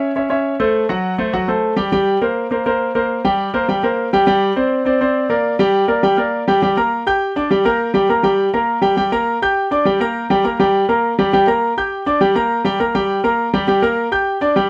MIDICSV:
0, 0, Header, 1, 2, 480
1, 0, Start_track
1, 0, Key_signature, -2, "minor"
1, 0, Tempo, 293974
1, 1216, Time_signature, 4, 2, 24, 8
1, 23996, End_track
2, 0, Start_track
2, 0, Title_t, "Grand piano"
2, 0, Program_c, 0, 0
2, 0, Note_on_c, 0, 61, 78
2, 0, Note_on_c, 0, 73, 71
2, 0, Note_on_c, 0, 76, 72
2, 167, Note_off_c, 0, 61, 0
2, 173, Note_off_c, 0, 73, 0
2, 176, Note_off_c, 0, 76, 0
2, 257, Note_on_c, 0, 61, 72
2, 267, Note_on_c, 0, 73, 68
2, 270, Note_on_c, 0, 76, 67
2, 454, Note_off_c, 0, 61, 0
2, 459, Note_off_c, 0, 73, 0
2, 461, Note_off_c, 0, 76, 0
2, 485, Note_on_c, 0, 61, 72
2, 491, Note_on_c, 0, 73, 77
2, 501, Note_on_c, 0, 76, 73
2, 884, Note_off_c, 0, 61, 0
2, 887, Note_off_c, 0, 73, 0
2, 893, Note_off_c, 0, 76, 0
2, 973, Note_on_c, 0, 69, 77
2, 975, Note_on_c, 0, 57, 80
2, 978, Note_on_c, 0, 72, 83
2, 1369, Note_off_c, 0, 57, 0
2, 1369, Note_off_c, 0, 69, 0
2, 1371, Note_off_c, 0, 72, 0
2, 1455, Note_on_c, 0, 54, 89
2, 1456, Note_on_c, 0, 66, 91
2, 1468, Note_on_c, 0, 78, 86
2, 1849, Note_off_c, 0, 54, 0
2, 1850, Note_off_c, 0, 66, 0
2, 1857, Note_off_c, 0, 78, 0
2, 1933, Note_on_c, 0, 57, 82
2, 1937, Note_on_c, 0, 69, 76
2, 1940, Note_on_c, 0, 72, 74
2, 2131, Note_off_c, 0, 57, 0
2, 2134, Note_off_c, 0, 69, 0
2, 2136, Note_off_c, 0, 72, 0
2, 2178, Note_on_c, 0, 54, 79
2, 2178, Note_on_c, 0, 66, 83
2, 2181, Note_on_c, 0, 78, 80
2, 2374, Note_off_c, 0, 54, 0
2, 2375, Note_off_c, 0, 66, 0
2, 2377, Note_off_c, 0, 78, 0
2, 2414, Note_on_c, 0, 57, 67
2, 2418, Note_on_c, 0, 69, 73
2, 2422, Note_on_c, 0, 72, 70
2, 2809, Note_off_c, 0, 57, 0
2, 2811, Note_off_c, 0, 69, 0
2, 2814, Note_off_c, 0, 72, 0
2, 2880, Note_on_c, 0, 55, 82
2, 2886, Note_on_c, 0, 67, 88
2, 2889, Note_on_c, 0, 79, 83
2, 3084, Note_off_c, 0, 55, 0
2, 3088, Note_off_c, 0, 67, 0
2, 3089, Note_off_c, 0, 79, 0
2, 3137, Note_on_c, 0, 55, 85
2, 3142, Note_on_c, 0, 67, 83
2, 3143, Note_on_c, 0, 79, 88
2, 3531, Note_off_c, 0, 55, 0
2, 3534, Note_off_c, 0, 67, 0
2, 3535, Note_off_c, 0, 79, 0
2, 3614, Note_on_c, 0, 58, 71
2, 3620, Note_on_c, 0, 70, 74
2, 3628, Note_on_c, 0, 72, 71
2, 4009, Note_off_c, 0, 58, 0
2, 4013, Note_off_c, 0, 70, 0
2, 4017, Note_off_c, 0, 72, 0
2, 4094, Note_on_c, 0, 58, 75
2, 4106, Note_on_c, 0, 70, 67
2, 4112, Note_on_c, 0, 72, 66
2, 4292, Note_off_c, 0, 58, 0
2, 4299, Note_off_c, 0, 70, 0
2, 4303, Note_off_c, 0, 72, 0
2, 4342, Note_on_c, 0, 58, 72
2, 4344, Note_on_c, 0, 70, 73
2, 4352, Note_on_c, 0, 72, 79
2, 4734, Note_off_c, 0, 58, 0
2, 4735, Note_off_c, 0, 70, 0
2, 4740, Note_off_c, 0, 72, 0
2, 4818, Note_on_c, 0, 58, 76
2, 4819, Note_on_c, 0, 70, 74
2, 4827, Note_on_c, 0, 72, 74
2, 5212, Note_off_c, 0, 58, 0
2, 5212, Note_off_c, 0, 70, 0
2, 5217, Note_off_c, 0, 72, 0
2, 5299, Note_on_c, 0, 55, 83
2, 5304, Note_on_c, 0, 79, 86
2, 5305, Note_on_c, 0, 67, 94
2, 5692, Note_off_c, 0, 55, 0
2, 5696, Note_off_c, 0, 67, 0
2, 5696, Note_off_c, 0, 79, 0
2, 5776, Note_on_c, 0, 58, 75
2, 5776, Note_on_c, 0, 70, 76
2, 5784, Note_on_c, 0, 72, 82
2, 5974, Note_off_c, 0, 58, 0
2, 5974, Note_off_c, 0, 70, 0
2, 5978, Note_off_c, 0, 72, 0
2, 6016, Note_on_c, 0, 55, 83
2, 6023, Note_on_c, 0, 67, 74
2, 6029, Note_on_c, 0, 79, 83
2, 6214, Note_off_c, 0, 55, 0
2, 6218, Note_off_c, 0, 67, 0
2, 6221, Note_off_c, 0, 79, 0
2, 6255, Note_on_c, 0, 58, 78
2, 6266, Note_on_c, 0, 70, 78
2, 6267, Note_on_c, 0, 72, 73
2, 6650, Note_off_c, 0, 58, 0
2, 6656, Note_off_c, 0, 70, 0
2, 6657, Note_off_c, 0, 72, 0
2, 6743, Note_on_c, 0, 55, 88
2, 6751, Note_on_c, 0, 67, 93
2, 6751, Note_on_c, 0, 79, 89
2, 6938, Note_off_c, 0, 55, 0
2, 6942, Note_off_c, 0, 79, 0
2, 6943, Note_off_c, 0, 67, 0
2, 6969, Note_on_c, 0, 55, 90
2, 6976, Note_on_c, 0, 67, 87
2, 6981, Note_on_c, 0, 79, 90
2, 7366, Note_off_c, 0, 55, 0
2, 7370, Note_off_c, 0, 67, 0
2, 7373, Note_off_c, 0, 79, 0
2, 7449, Note_on_c, 0, 60, 75
2, 7455, Note_on_c, 0, 72, 76
2, 7458, Note_on_c, 0, 74, 72
2, 7846, Note_off_c, 0, 60, 0
2, 7850, Note_off_c, 0, 72, 0
2, 7852, Note_off_c, 0, 74, 0
2, 7924, Note_on_c, 0, 60, 73
2, 7936, Note_on_c, 0, 72, 71
2, 7942, Note_on_c, 0, 74, 76
2, 8127, Note_off_c, 0, 60, 0
2, 8134, Note_off_c, 0, 72, 0
2, 8137, Note_off_c, 0, 74, 0
2, 8176, Note_on_c, 0, 60, 77
2, 8184, Note_on_c, 0, 72, 75
2, 8186, Note_on_c, 0, 74, 74
2, 8570, Note_off_c, 0, 60, 0
2, 8575, Note_off_c, 0, 72, 0
2, 8576, Note_off_c, 0, 74, 0
2, 8646, Note_on_c, 0, 58, 76
2, 8649, Note_on_c, 0, 70, 78
2, 8658, Note_on_c, 0, 74, 79
2, 9044, Note_off_c, 0, 58, 0
2, 9046, Note_off_c, 0, 70, 0
2, 9051, Note_off_c, 0, 74, 0
2, 9130, Note_on_c, 0, 55, 93
2, 9137, Note_on_c, 0, 67, 96
2, 9144, Note_on_c, 0, 79, 88
2, 9527, Note_off_c, 0, 55, 0
2, 9531, Note_off_c, 0, 67, 0
2, 9535, Note_off_c, 0, 79, 0
2, 9597, Note_on_c, 0, 58, 73
2, 9603, Note_on_c, 0, 70, 81
2, 9612, Note_on_c, 0, 74, 78
2, 9802, Note_off_c, 0, 58, 0
2, 9806, Note_off_c, 0, 70, 0
2, 9811, Note_off_c, 0, 74, 0
2, 9845, Note_on_c, 0, 55, 86
2, 9849, Note_on_c, 0, 67, 80
2, 9855, Note_on_c, 0, 79, 86
2, 10047, Note_off_c, 0, 55, 0
2, 10049, Note_off_c, 0, 67, 0
2, 10053, Note_off_c, 0, 79, 0
2, 10075, Note_on_c, 0, 58, 74
2, 10083, Note_on_c, 0, 70, 75
2, 10092, Note_on_c, 0, 74, 70
2, 10478, Note_off_c, 0, 58, 0
2, 10482, Note_off_c, 0, 70, 0
2, 10488, Note_off_c, 0, 74, 0
2, 10573, Note_on_c, 0, 55, 86
2, 10579, Note_on_c, 0, 67, 91
2, 10587, Note_on_c, 0, 79, 85
2, 10772, Note_off_c, 0, 55, 0
2, 10775, Note_off_c, 0, 67, 0
2, 10780, Note_off_c, 0, 79, 0
2, 10814, Note_on_c, 0, 55, 87
2, 10819, Note_on_c, 0, 67, 85
2, 10827, Note_on_c, 0, 79, 84
2, 11012, Note_off_c, 0, 55, 0
2, 11015, Note_off_c, 0, 67, 0
2, 11020, Note_off_c, 0, 79, 0
2, 11050, Note_on_c, 0, 58, 75
2, 11058, Note_on_c, 0, 70, 81
2, 11061, Note_on_c, 0, 82, 77
2, 11447, Note_off_c, 0, 58, 0
2, 11451, Note_off_c, 0, 70, 0
2, 11453, Note_off_c, 0, 82, 0
2, 11537, Note_on_c, 0, 67, 79
2, 11544, Note_on_c, 0, 91, 78
2, 11547, Note_on_c, 0, 79, 84
2, 11931, Note_off_c, 0, 67, 0
2, 11935, Note_off_c, 0, 91, 0
2, 11937, Note_off_c, 0, 79, 0
2, 12019, Note_on_c, 0, 62, 82
2, 12023, Note_on_c, 0, 74, 73
2, 12030, Note_on_c, 0, 86, 78
2, 12215, Note_off_c, 0, 62, 0
2, 12217, Note_off_c, 0, 74, 0
2, 12221, Note_off_c, 0, 86, 0
2, 12255, Note_on_c, 0, 55, 90
2, 12259, Note_on_c, 0, 67, 86
2, 12266, Note_on_c, 0, 79, 83
2, 12453, Note_off_c, 0, 55, 0
2, 12455, Note_off_c, 0, 67, 0
2, 12459, Note_off_c, 0, 79, 0
2, 12492, Note_on_c, 0, 58, 81
2, 12497, Note_on_c, 0, 82, 80
2, 12499, Note_on_c, 0, 70, 86
2, 12888, Note_off_c, 0, 58, 0
2, 12891, Note_off_c, 0, 82, 0
2, 12892, Note_off_c, 0, 70, 0
2, 12960, Note_on_c, 0, 55, 89
2, 12969, Note_on_c, 0, 67, 82
2, 12973, Note_on_c, 0, 79, 85
2, 13164, Note_off_c, 0, 55, 0
2, 13169, Note_off_c, 0, 67, 0
2, 13172, Note_off_c, 0, 79, 0
2, 13215, Note_on_c, 0, 58, 75
2, 13218, Note_on_c, 0, 70, 73
2, 13226, Note_on_c, 0, 82, 77
2, 13413, Note_off_c, 0, 58, 0
2, 13414, Note_off_c, 0, 70, 0
2, 13419, Note_off_c, 0, 82, 0
2, 13441, Note_on_c, 0, 55, 86
2, 13450, Note_on_c, 0, 67, 89
2, 13451, Note_on_c, 0, 79, 85
2, 13842, Note_off_c, 0, 55, 0
2, 13847, Note_off_c, 0, 67, 0
2, 13847, Note_off_c, 0, 79, 0
2, 13937, Note_on_c, 0, 58, 77
2, 13938, Note_on_c, 0, 70, 81
2, 13944, Note_on_c, 0, 82, 72
2, 14331, Note_off_c, 0, 58, 0
2, 14331, Note_off_c, 0, 70, 0
2, 14335, Note_off_c, 0, 82, 0
2, 14393, Note_on_c, 0, 55, 83
2, 14401, Note_on_c, 0, 67, 93
2, 14408, Note_on_c, 0, 79, 89
2, 14600, Note_off_c, 0, 55, 0
2, 14605, Note_off_c, 0, 67, 0
2, 14609, Note_off_c, 0, 79, 0
2, 14645, Note_on_c, 0, 55, 84
2, 14647, Note_on_c, 0, 67, 86
2, 14655, Note_on_c, 0, 79, 89
2, 14847, Note_off_c, 0, 55, 0
2, 14848, Note_off_c, 0, 67, 0
2, 14853, Note_off_c, 0, 79, 0
2, 14891, Note_on_c, 0, 58, 79
2, 14894, Note_on_c, 0, 70, 84
2, 14898, Note_on_c, 0, 82, 83
2, 15287, Note_off_c, 0, 58, 0
2, 15289, Note_off_c, 0, 70, 0
2, 15291, Note_off_c, 0, 82, 0
2, 15385, Note_on_c, 0, 67, 84
2, 15387, Note_on_c, 0, 79, 79
2, 15391, Note_on_c, 0, 91, 80
2, 15776, Note_off_c, 0, 67, 0
2, 15777, Note_off_c, 0, 79, 0
2, 15779, Note_off_c, 0, 91, 0
2, 15854, Note_on_c, 0, 62, 77
2, 15863, Note_on_c, 0, 74, 77
2, 15867, Note_on_c, 0, 86, 79
2, 16053, Note_off_c, 0, 62, 0
2, 16058, Note_off_c, 0, 74, 0
2, 16060, Note_off_c, 0, 86, 0
2, 16088, Note_on_c, 0, 55, 87
2, 16097, Note_on_c, 0, 67, 84
2, 16102, Note_on_c, 0, 79, 85
2, 16289, Note_off_c, 0, 55, 0
2, 16294, Note_off_c, 0, 67, 0
2, 16297, Note_off_c, 0, 79, 0
2, 16329, Note_on_c, 0, 58, 79
2, 16337, Note_on_c, 0, 70, 81
2, 16345, Note_on_c, 0, 82, 86
2, 16726, Note_off_c, 0, 58, 0
2, 16731, Note_off_c, 0, 70, 0
2, 16735, Note_off_c, 0, 82, 0
2, 16819, Note_on_c, 0, 55, 92
2, 16825, Note_on_c, 0, 67, 84
2, 16828, Note_on_c, 0, 79, 86
2, 17015, Note_off_c, 0, 55, 0
2, 17018, Note_off_c, 0, 67, 0
2, 17020, Note_off_c, 0, 79, 0
2, 17049, Note_on_c, 0, 58, 74
2, 17057, Note_on_c, 0, 70, 77
2, 17057, Note_on_c, 0, 82, 77
2, 17249, Note_off_c, 0, 58, 0
2, 17254, Note_off_c, 0, 70, 0
2, 17254, Note_off_c, 0, 82, 0
2, 17300, Note_on_c, 0, 55, 90
2, 17303, Note_on_c, 0, 67, 88
2, 17310, Note_on_c, 0, 79, 87
2, 17693, Note_off_c, 0, 55, 0
2, 17694, Note_off_c, 0, 67, 0
2, 17698, Note_off_c, 0, 79, 0
2, 17776, Note_on_c, 0, 58, 80
2, 17778, Note_on_c, 0, 70, 73
2, 17787, Note_on_c, 0, 82, 75
2, 18170, Note_off_c, 0, 58, 0
2, 18172, Note_off_c, 0, 70, 0
2, 18176, Note_off_c, 0, 82, 0
2, 18264, Note_on_c, 0, 55, 92
2, 18267, Note_on_c, 0, 67, 88
2, 18273, Note_on_c, 0, 79, 81
2, 18458, Note_off_c, 0, 55, 0
2, 18460, Note_off_c, 0, 67, 0
2, 18464, Note_off_c, 0, 79, 0
2, 18504, Note_on_c, 0, 67, 93
2, 18505, Note_on_c, 0, 55, 84
2, 18513, Note_on_c, 0, 79, 90
2, 18698, Note_off_c, 0, 55, 0
2, 18698, Note_off_c, 0, 67, 0
2, 18703, Note_off_c, 0, 79, 0
2, 18730, Note_on_c, 0, 58, 75
2, 18736, Note_on_c, 0, 70, 80
2, 18745, Note_on_c, 0, 82, 80
2, 19126, Note_off_c, 0, 58, 0
2, 19130, Note_off_c, 0, 70, 0
2, 19135, Note_off_c, 0, 82, 0
2, 19227, Note_on_c, 0, 67, 77
2, 19227, Note_on_c, 0, 79, 75
2, 19231, Note_on_c, 0, 91, 75
2, 19616, Note_off_c, 0, 67, 0
2, 19617, Note_off_c, 0, 79, 0
2, 19619, Note_off_c, 0, 91, 0
2, 19697, Note_on_c, 0, 62, 78
2, 19706, Note_on_c, 0, 74, 78
2, 19706, Note_on_c, 0, 86, 82
2, 19894, Note_off_c, 0, 62, 0
2, 19899, Note_off_c, 0, 74, 0
2, 19899, Note_off_c, 0, 86, 0
2, 19931, Note_on_c, 0, 55, 93
2, 19935, Note_on_c, 0, 67, 86
2, 19940, Note_on_c, 0, 79, 82
2, 20130, Note_off_c, 0, 55, 0
2, 20133, Note_off_c, 0, 67, 0
2, 20136, Note_off_c, 0, 79, 0
2, 20168, Note_on_c, 0, 58, 81
2, 20175, Note_on_c, 0, 70, 76
2, 20179, Note_on_c, 0, 82, 82
2, 20565, Note_off_c, 0, 58, 0
2, 20569, Note_off_c, 0, 70, 0
2, 20571, Note_off_c, 0, 82, 0
2, 20647, Note_on_c, 0, 55, 83
2, 20654, Note_on_c, 0, 67, 93
2, 20663, Note_on_c, 0, 79, 92
2, 20848, Note_off_c, 0, 55, 0
2, 20852, Note_off_c, 0, 67, 0
2, 20857, Note_off_c, 0, 79, 0
2, 20895, Note_on_c, 0, 58, 71
2, 20897, Note_on_c, 0, 70, 74
2, 20907, Note_on_c, 0, 82, 75
2, 21092, Note_off_c, 0, 58, 0
2, 21093, Note_off_c, 0, 70, 0
2, 21099, Note_off_c, 0, 82, 0
2, 21140, Note_on_c, 0, 55, 81
2, 21141, Note_on_c, 0, 67, 90
2, 21144, Note_on_c, 0, 79, 91
2, 21532, Note_off_c, 0, 55, 0
2, 21533, Note_off_c, 0, 67, 0
2, 21534, Note_off_c, 0, 79, 0
2, 21613, Note_on_c, 0, 58, 75
2, 21618, Note_on_c, 0, 70, 80
2, 21626, Note_on_c, 0, 82, 78
2, 22007, Note_off_c, 0, 58, 0
2, 22010, Note_off_c, 0, 70, 0
2, 22015, Note_off_c, 0, 82, 0
2, 22100, Note_on_c, 0, 55, 95
2, 22102, Note_on_c, 0, 67, 89
2, 22105, Note_on_c, 0, 79, 87
2, 22295, Note_off_c, 0, 55, 0
2, 22296, Note_off_c, 0, 67, 0
2, 22298, Note_off_c, 0, 79, 0
2, 22334, Note_on_c, 0, 55, 92
2, 22334, Note_on_c, 0, 67, 86
2, 22343, Note_on_c, 0, 79, 84
2, 22531, Note_off_c, 0, 55, 0
2, 22532, Note_off_c, 0, 67, 0
2, 22536, Note_off_c, 0, 79, 0
2, 22570, Note_on_c, 0, 58, 86
2, 22572, Note_on_c, 0, 70, 81
2, 22583, Note_on_c, 0, 82, 81
2, 22966, Note_off_c, 0, 58, 0
2, 22967, Note_off_c, 0, 70, 0
2, 22974, Note_off_c, 0, 82, 0
2, 23050, Note_on_c, 0, 67, 78
2, 23054, Note_on_c, 0, 79, 75
2, 23059, Note_on_c, 0, 91, 74
2, 23446, Note_off_c, 0, 67, 0
2, 23448, Note_off_c, 0, 79, 0
2, 23451, Note_off_c, 0, 91, 0
2, 23531, Note_on_c, 0, 62, 81
2, 23537, Note_on_c, 0, 74, 83
2, 23543, Note_on_c, 0, 86, 76
2, 23729, Note_off_c, 0, 62, 0
2, 23733, Note_off_c, 0, 74, 0
2, 23736, Note_off_c, 0, 86, 0
2, 23771, Note_on_c, 0, 55, 95
2, 23778, Note_on_c, 0, 67, 89
2, 23781, Note_on_c, 0, 79, 88
2, 23969, Note_off_c, 0, 55, 0
2, 23974, Note_off_c, 0, 67, 0
2, 23975, Note_off_c, 0, 79, 0
2, 23996, End_track
0, 0, End_of_file